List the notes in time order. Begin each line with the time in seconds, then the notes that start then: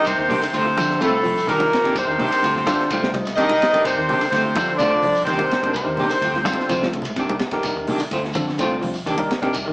Already playing: D3 D4 D#4 G4 A#4
0.04 C2 C3 C4 C5, muted clean electric guitar stroke, ride bell, shekere
0.17 D#2 D#3, muted clean electric guitar stroke, shekere
0.29 C3 D#3 A#3 D4 G4, open hi-hat, high conga, low conga, shekere
0.41 D3, muted clean electric guitar stroke, ride bell, shekere
0.53 D2 C3 F3 A3 C4 F4 C5, kick, ride bell, shekere
0.66 muted clean electric guitar stroke
0.76 D3 F3 C4 D4 F4 A4, kick, ride bell, high conga, shekere
0.88 muted clean electric guitar stroke, snare, shekere
0.98 C2 A2 C3 A3 C4 D4 F4 A4, muted clean electric guitar stroke, ride bell, high conga, shekere
1.03 A3 A4
1.23 F3, muted clean electric guitar stroke, kick, open hi-hat, low conga, shekere
1.37 muted clean electric guitar stroke, shekere
1.47 C2 A#2 D#3 A#3 D4 G4 A#4, kick, ride bell, shekere
1.59 C2 D4 D#4 G4 A#4, high conga
1.72 muted clean electric guitar stroke, snare, ride bell
1.83 C3 A#3 D4 D#4 G4 A4, muted fingered electric bass stroke, kick, snare, ride bell
1.95 C2 C3 C4 C5, muted clean electric guitar stroke, ride bell, shekere
2.07 D#2 D#3 D4 D#4 G4 A#4, muted clean electric guitar stroke, shekere
2.18 C3 D#3 A#3 D4 G4, open hi-hat, high conga, low conga, shekere
2.31 muted clean electric guitar stroke, ride bell, shekere
2.43 D2 F3 A3 C4 F4, kick, ride bell, shekere
2.55 muted clean electric guitar stroke, kick, snare
2.66 D3 D4 F4 A4 C5 G5, kick, snare, ride bell, high conga, shekere
2.78 muted clean electric guitar stroke, snare, shekere
2.90 C2 F3 A3 C4 F5, ride bell, high conga, shekere
3.03 snare
3.14 G3 D#5, muted clean electric guitar stroke, kick, snare, ride bell, low conga, shekere
3.25 muted clean electric guitar stroke, snare, ride bell, shekere
3.36 C2 C3 D#3 A#3 D4 D#4 G4 D#5, kick, ride bell, shekere
3.49 C2, high conga
3.62 muted clean electric guitar stroke, snare, ride bell
3.72 D3 A#3 D4 D#4 G4 A#4 D5, muted fingered electric bass stroke, kick, snare, ride bell
3.85 C2 C3 C4 C5, muted clean electric guitar stroke, ride bell, shekere
3.97 D#2 D#3, muted clean electric guitar stroke, shekere
4.09 C3 D#3 A#3 D4 G4, open hi-hat, high conga, low conga, shekere
4.21 D3, muted clean electric guitar stroke, ride bell, shekere
4.30 D2 C3 F3 A3 C4 F4 C5, kick, snare, ride bell, shekere
4.45 muted clean electric guitar stroke
4.55 D3 F3 D4 F4 A4 C5, kick, ride bell, high conga, shekere
4.68 muted clean electric guitar stroke, shekere
4.76 D3 D4 F4 D5, high conga, low conga, shekere
4.80 C2 D3 F3 A3 C4 D4 F4 A4 C5, snare, ride bell
5.03 F3, muted clean electric guitar stroke, kick, open hi-hat, low conga, shekere
5.15 muted clean electric guitar stroke, shekere
5.24 C2 C3 D#3 C4 C5, kick, snare, ride bell, shekere
5.29 D#3 A#3 D4 G4
5.37 C2 D4 D#4 G4 A#4, high conga
5.51 muted clean electric guitar stroke, snare, ride bell
5.61 C3 A#3 D4 D#4 G4 A#4, muted fingered electric bass stroke, kick, ride bell
5.73 C2 C3 C4 C5, muted clean electric guitar stroke, ride bell, shekere
5.84 D#2 D#3 D4 D#4 G4 A#4, shekere
5.88 muted clean electric guitar stroke
5.97 C3 D#3 A#3 D4 G4, open hi-hat, high conga, low conga, shekere
6.09 D3, muted clean electric guitar stroke, ride bell, shekere
6.22 D2 F3 A3 C4 F4, kick, ride bell, shekere
6.34 muted clean electric guitar stroke, kick, snare
6.44 D3 C4 D4 F4 A4, kick, snare, ride bell, high conga, shekere
6.53 high conga
6.57 muted clean electric guitar stroke, snare, shekere
6.69 C2 F3 C4 F4, ride bell, low conga, shekere
6.77 low conga
6.83 snare, low conga
6.93 muted clean electric guitar stroke, kick, ride bell, low conga, shekere
7.02 ride bell, low conga, shekere
7.06 muted clean electric guitar stroke, low conga
7.15 C2 C3 D#3 D4, kick, ride bell, shekere
7.19 A#3 G4
7.29 C2, high conga
7.39 muted clean electric guitar stroke, snare, ride bell
7.51 D3 A#3 D4 D#4 G4 A#4, muted fingered electric bass stroke, kick, snare, ride bell
7.63 C2, muted clean electric guitar stroke, snare, ride bell, shekere
7.76 D#2 D#3, muted clean electric guitar stroke, shekere
7.87 C3 D#3 A#3 D4 G4, open hi-hat, high conga, low conga, shekere
7.98 D3, muted clean electric guitar stroke, ride bell, shekere
8.10 D2 A3 C4 F4, kick, ride bell, shekere
8.24 muted clean electric guitar stroke, snare
8.33 D3 F3 C4 D4 F4, kick, ride bell, high conga, shekere
8.37 A4
8.47 muted clean electric guitar stroke, snare, shekere
8.58 C2 D3 A3 C4 D4 F4 C5, ride bell, high conga, shekere
8.82 F3, muted clean electric guitar stroke, kick, open hi-hat, low conga, shekere
8.93 muted clean electric guitar stroke, shekere
9.06 C2 D#3 A#3 D4 G4, muted clean electric guitar stroke, kick, ride bell, shekere
9.18 C2 D4 D#4 G4 A#4, high conga
9.31 muted clean electric guitar stroke, snare, ride bell
9.42 C3 A#3 D4 D#4 G4 A#4, muted fingered electric bass stroke, kick, snare, ride bell
9.53 C2, muted clean electric guitar stroke, ride bell, shekere
9.65 D#2 D#3 D4 D#4 G4 A#4, muted clean electric guitar stroke, shekere